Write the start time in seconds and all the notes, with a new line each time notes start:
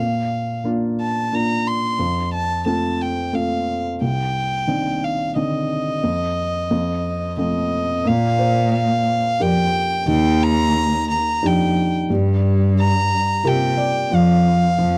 Already playing: F5
0.00 A#2
0.64 A#3 D4 F4
1.01 A5
1.32 A#3 D4 F4 A#5
1.67 C6
1.99 F2
2.34 A5
2.66 A3 C4 F4 A5
3.01 G5
3.33 A3 C4 F4 F5
4.01 C2 G5
4.67 D#3 C4 D4
5.04 F5
5.36 D3 D#3 C4 D#5
6.03 F2
6.71 F2
7.37 F3 A3 C4 D#5
8.04 A#2 A#3 F5
8.39 C5
8.74 F5
9.40 F2 G4 A#4 D5 G5
10.07 D#2 D#3 G5
10.43 A#5
11.11 A#5
11.43 F2 D4 D#4 G4 G5
12.10 G2 G3
12.80 A#5
13.44 C3 F4 G4 A#4 G5
13.77 D5
14.11 F2 F3 F5
14.79 F2 F3